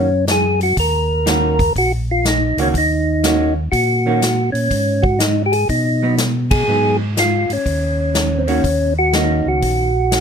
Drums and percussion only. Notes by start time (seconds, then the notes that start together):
0.28 snare, closed hi-hat
0.61 open hi-hat
0.77 kick, open hi-hat
1.26 snare, closed hi-hat
1.59 kick, open hi-hat
1.76 kick, open hi-hat
2.25 snare, closed hi-hat
2.58 open hi-hat
2.74 kick, open hi-hat
3.24 snare, closed hi-hat
3.72 kick, open hi-hat
4.22 snare, closed hi-hat
4.55 open hi-hat
4.71 kick, open hi-hat
5.04 kick
5.20 snare, closed hi-hat
5.53 open hi-hat
5.69 kick, open hi-hat
6.18 snare, closed hi-hat
6.51 kick, ride
7.17 snare, closed hi-hat
7.50 open hi-hat
7.66 kick, open hi-hat
8.15 snare, closed hi-hat
8.48 open hi-hat
8.64 kick, open hi-hat
9.13 snare, closed hi-hat
9.62 kick, open hi-hat
10.12 snare, closed hi-hat